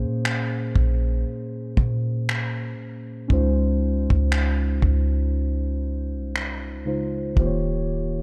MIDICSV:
0, 0, Header, 1, 4, 480
1, 0, Start_track
1, 0, Key_signature, -5, "major"
1, 0, Tempo, 1016949
1, 1557, Time_signature, 4, 2, 24, 8
1, 3882, End_track
2, 0, Start_track
2, 0, Title_t, "Synth keys"
2, 0, Program_c, 0, 88
2, 0, Control_c, 0, 64, 127
2, 0, Note_on_c, 0, 46, 73
2, 0, Note_on_c, 0, 58, 65
2, 0, Note_on_c, 0, 61, 64
2, 0, Note_on_c, 0, 68, 68
2, 0, Note_on_c, 0, 72, 76
2, 1533, Note_off_c, 0, 46, 0
2, 1536, Note_off_c, 0, 58, 0
2, 1539, Note_off_c, 0, 61, 0
2, 1541, Note_off_c, 0, 68, 0
2, 1543, Note_off_c, 0, 72, 0
2, 1548, Note_on_c, 0, 61, 70
2, 1554, Note_on_c, 0, 56, 70
2, 1559, Note_on_c, 0, 63, 67
2, 1563, Control_c, 0, 64, 0
2, 1564, Note_on_c, 0, 65, 65
2, 1569, Note_on_c, 0, 72, 79
2, 1654, Control_c, 0, 64, 127
2, 3214, Note_off_c, 0, 61, 0
2, 3217, Note_off_c, 0, 56, 0
2, 3219, Note_off_c, 0, 63, 0
2, 3222, Note_off_c, 0, 65, 0
2, 3225, Note_off_c, 0, 72, 0
2, 3234, Note_on_c, 0, 49, 54
2, 3236, Note_on_c, 0, 56, 49
2, 3238, Note_on_c, 0, 63, 50
2, 3242, Note_on_c, 0, 65, 49
2, 3244, Note_on_c, 0, 72, 57
2, 3469, Note_on_c, 0, 51, 77
2, 3473, Note_off_c, 0, 65, 0
2, 3473, Note_on_c, 0, 58, 64
2, 3475, Note_off_c, 0, 49, 0
2, 3477, Note_off_c, 0, 56, 0
2, 3478, Note_off_c, 0, 63, 0
2, 3479, Note_on_c, 0, 65, 68
2, 3480, Note_off_c, 0, 72, 0
2, 3483, Control_c, 0, 64, 0
2, 3484, Note_on_c, 0, 67, 67
2, 3489, Note_on_c, 0, 72, 65
2, 3519, Note_off_c, 0, 72, 0
2, 3519, Note_on_c, 0, 73, 77
2, 3553, Control_c, 0, 64, 127
2, 3882, Note_off_c, 0, 51, 0
2, 3882, Note_off_c, 0, 58, 0
2, 3882, Note_off_c, 0, 65, 0
2, 3882, Note_off_c, 0, 67, 0
2, 3882, Note_off_c, 0, 73, 0
2, 3882, End_track
3, 0, Start_track
3, 0, Title_t, "808-style bass"
3, 0, Program_c, 1, 38
3, 16, Note_on_c, 1, 46, 91
3, 340, Note_off_c, 1, 46, 0
3, 357, Note_on_c, 1, 34, 102
3, 588, Note_off_c, 1, 34, 0
3, 837, Note_on_c, 1, 46, 97
3, 1298, Note_off_c, 1, 46, 0
3, 1558, Note_on_c, 1, 37, 102
3, 1922, Note_off_c, 1, 37, 0
3, 1937, Note_on_c, 1, 37, 100
3, 2264, Note_off_c, 1, 37, 0
3, 2277, Note_on_c, 1, 37, 101
3, 2898, Note_on_c, 1, 36, 95
3, 2905, Note_off_c, 1, 37, 0
3, 3188, Note_on_c, 1, 37, 96
3, 3195, Note_off_c, 1, 36, 0
3, 3464, Note_off_c, 1, 37, 0
3, 3478, Note_on_c, 1, 27, 113
3, 3882, Note_off_c, 1, 27, 0
3, 3882, End_track
4, 0, Start_track
4, 0, Title_t, "Drums"
4, 119, Note_on_c, 9, 26, 106
4, 166, Note_off_c, 9, 26, 0
4, 357, Note_on_c, 9, 36, 83
4, 404, Note_off_c, 9, 36, 0
4, 836, Note_on_c, 9, 36, 94
4, 884, Note_off_c, 9, 36, 0
4, 1081, Note_on_c, 9, 26, 108
4, 1128, Note_off_c, 9, 26, 0
4, 1558, Note_on_c, 9, 36, 108
4, 1605, Note_off_c, 9, 36, 0
4, 1936, Note_on_c, 9, 36, 90
4, 1983, Note_off_c, 9, 36, 0
4, 2039, Note_on_c, 9, 26, 114
4, 2086, Note_off_c, 9, 26, 0
4, 2277, Note_on_c, 9, 36, 88
4, 2324, Note_off_c, 9, 36, 0
4, 3000, Note_on_c, 9, 26, 114
4, 3047, Note_off_c, 9, 26, 0
4, 3478, Note_on_c, 9, 36, 103
4, 3525, Note_off_c, 9, 36, 0
4, 3882, End_track
0, 0, End_of_file